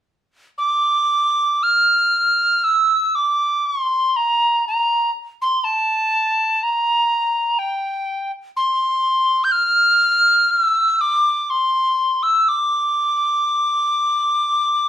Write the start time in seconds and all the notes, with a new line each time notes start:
0.58 D6
1.63 F6
2.64 E6
3.15 D6
3.67 C6
4.16 A#5
4.68 A#5
5.42 C6
5.64 A5
6.63 A#5
7.59 G5
8.57 C6
9.44 G6
9.52 F6
10.50 E6
11.01 D6
11.50 C6
12.23 E6
12.49 D6